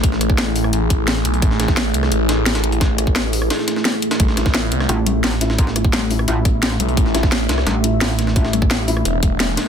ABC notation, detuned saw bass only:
X:1
M:4/4
L:1/8
Q:1/4=173
K:C
V:1 name="Detuned saw bass" clef=bass
A,,,4 A,,,3 B,,, | A,,, A,,,2 C,, A,,,4- | A,,,4 z4 | A,,, A,,,2 C,, z4 |
z6 z B,,, | A,,, A,,,2 C,, z4 | z4 E,,,3 z |]